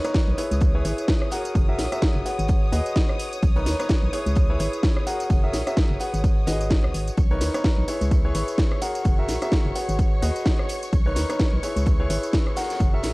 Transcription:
Already playing: C#5 D#6
0.04 D#4 A#4 B4 C#5, cross-stick, closed hi-hat, tambourine
0.14 kick, snare, closed hi-hat, tambourine
0.28 B1
0.38 E4 G#4 B4 C#5, closed hi-hat, open hi-hat, tambourine
0.51 C#2, snare, closed hi-hat, tambourine
0.61 kick, closed hi-hat, tambourine
0.75 E4 G#4 B4 C#5
0.85 G#1 E4 G#4 B4 C#5, closed hi-hat, open hi-hat, tambourine
0.98 closed hi-hat, tambourine
1.08 kick, snare, closed hi-hat, tambourine
1.22 cross-stick
1.31 F#4 G#4 A#4 F#5, closed hi-hat, open hi-hat, tambourine
1.45 closed hi-hat, tambourine
1.55 F#1, kick, closed hi-hat, tambourine
1.68 F#4 G#4 A#4 E5
1.79 A#1, snare, closed hi-hat, open hi-hat, tambourine
1.92 F#4 G#4 A#4 E5, cross-stick, closed hi-hat, tambourine
2.02 kick, snare, closed hi-hat, tambourine
2.15 F#1
2.25 F#4 G#4 B4 F#5, closed hi-hat, open hi-hat, tambourine
2.39 G#1, closed hi-hat, tambourine
2.48 kick, closed hi-hat, tambourine
2.72 D#2 F#4 G#4 B4 D#5, closed hi-hat, open hi-hat, tambourine
2.86 closed hi-hat, tambourine
2.96 kick, snare, closed hi-hat, tambourine
3.09 cross-stick
3.19 closed hi-hat, open hi-hat, tambourine
3.33 closed hi-hat, tambourine
3.42 B1, kick, closed hi-hat, tambourine
3.56 D#4 A#4 B4 C#5, closed hi-hat
3.66 D#2, snare, closed hi-hat, open hi-hat, tambourine
3.79 D#4 A#4 B4 C#5, cross-stick, closed hi-hat, tambourine
3.89 kick, snare, closed hi-hat, tambourine
4.03 B1
4.13 E4 G#4 B4 C#5, closed hi-hat, open hi-hat, tambourine
4.26 C#2, snare, closed hi-hat, tambourine
4.35 kick, closed hi-hat, tambourine
4.50 E4 G#4 B4 C#5
4.59 G#1 E4 G#4 B4 C#5, closed hi-hat, open hi-hat, tambourine
4.73 closed hi-hat, tambourine
4.83 kick, snare, closed hi-hat, tambourine
4.97 cross-stick
5.07 F#4 G#4 A#4 F#5, closed hi-hat, open hi-hat, tambourine
5.20 closed hi-hat, tambourine
5.30 F#1, kick, closed hi-hat, tambourine
5.44 F#4 G#4 A#4 E5
5.53 A#1, snare, closed hi-hat, open hi-hat, tambourine
5.67 F#4 G#4 A#4 E5, cross-stick, closed hi-hat, tambourine
5.77 kick, snare, closed hi-hat, tambourine
5.90 F#1
6.00 F#4 G#4 B4 F#5, closed hi-hat, open hi-hat, tambourine
6.14 G#1, closed hi-hat, tambourine
6.24 kick, closed hi-hat, tambourine
6.47 G#1 F#4 G#4 B4 D#5, snare, closed hi-hat, open hi-hat, tambourine
6.61 closed hi-hat, tambourine
6.70 kick, snare, closed hi-hat, tambourine
6.84 C#2, cross-stick
6.94 G#1, closed hi-hat, open hi-hat, tambourine
7.08 closed hi-hat, tambourine
7.17 B1 C#5 C#6, kick, closed hi-hat, tambourine
7.31 D#4 A#4 B4 C#5, closed hi-hat
7.41 D#2, snare, closed hi-hat, open hi-hat, ride, tambourine
7.54 D#4 A#4 B4 C#5, cross-stick, closed hi-hat, tambourine
7.64 kick, snare, closed hi-hat, tambourine
7.78 B1
7.88 E4 G#4 B4 C#5, closed hi-hat, open hi-hat, ride, tambourine
8.01 C#2, snare, closed hi-hat, tambourine
8.11 kick, closed hi-hat, tambourine
8.25 E4 G#4 B4 C#5
8.35 G#1 E4 G#4 B4 C#5, closed hi-hat, open hi-hat, ride, tambourine
8.48 closed hi-hat, tambourine
8.58 kick, snare, closed hi-hat, tambourine
8.72 cross-stick
8.82 F#4 G#4 A#4 F#5, closed hi-hat, open hi-hat, ride, tambourine
8.95 closed hi-hat, tambourine
9.05 F#1, kick, closed hi-hat, tambourine
9.19 F#4 G#4 A#4 E5
9.28 A#1, snare, closed hi-hat, open hi-hat, ride, tambourine
9.42 F#4 G#4 A#4 E5, cross-stick, closed hi-hat, tambourine
9.52 kick, snare, closed hi-hat, tambourine
9.65 F#1
9.75 F#4 G#4 B4 F#5, closed hi-hat, open hi-hat, ride, tambourine
9.89 G#1, closed hi-hat, tambourine
9.99 kick, closed hi-hat, tambourine
10.22 D#2 F#4 G#4 B4 D#5, closed hi-hat, open hi-hat, ride, tambourine
10.36 closed hi-hat, tambourine
10.46 kick, snare, closed hi-hat
10.59 cross-stick
10.69 closed hi-hat, open hi-hat, ride, tambourine
10.83 closed hi-hat, tambourine
10.93 B1, kick, closed hi-hat, tambourine
11.06 D#4 A#4 B4 C#5, closed hi-hat
11.16 D#2, snare, closed hi-hat, open hi-hat, ride, tambourine
11.29 D#4 A#4 B4 C#5, cross-stick, closed hi-hat, tambourine
11.39 kick, snare, closed hi-hat, tambourine
11.53 B1
11.63 E4 G#4 B4 C#5, closed hi-hat, open hi-hat, ride, tambourine
11.76 C#2, snare, closed hi-hat, tambourine
11.86 kick, closed hi-hat, tambourine
12.00 E4 G#4 B4 C#5
12.10 G#1 E4 G#4 B4 C#5, closed hi-hat, open hi-hat, ride, tambourine
12.23 closed hi-hat, tambourine
12.33 kick, snare, closed hi-hat, tambourine
12.47 cross-stick
12.56 F#4 G#4 A#4 F#5, snare, closed hi-hat, open hi-hat, ride, tambourine
12.63 snare, closed hi-hat
12.70 snare, closed hi-hat, tambourine
12.75 snare, closed hi-hat
12.80 F#1, kick, closed hi-hat, tambourine
12.94 F#4 G#4 A#4 E5
13.03 A#1, snare, closed hi-hat, open hi-hat, ride, tambourine

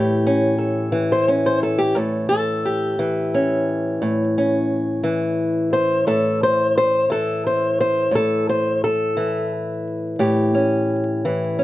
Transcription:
Already playing: A2 E3 G4
0.27 C#4
0.58 A4
0.92 E3
1.12 C5
1.28 C#4
1.46 C5
1.63 A4
1.78 G4
1.95 A2 A4
2.29 A4
2.65 G4
2.99 E3
3.34 C#4
4.02 A2
4.38 C#4
5.04 E3
5.73 C5
6.07 A2 A4
6.43 C5
6.78 C5
7.10 E3 A4
7.47 C5
7.80 C5
8.11 A2
8.15 A4
8.49 C5
8.84 A4
9.17 E3
10.19 A2 G4
10.54 C#4
11.25 E3
11.59 C#4

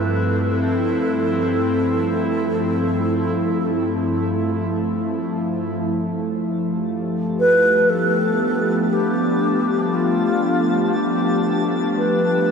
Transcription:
Already playing: G2 F3 A3 C4 E4 A4
5.87 G3 D4 A4 A5
6.66 G4
7.39 B4
7.61 B3
7.89 A4
8.29 D4
8.92 G4
9.94 F4
10.96 G4
11.97 B4

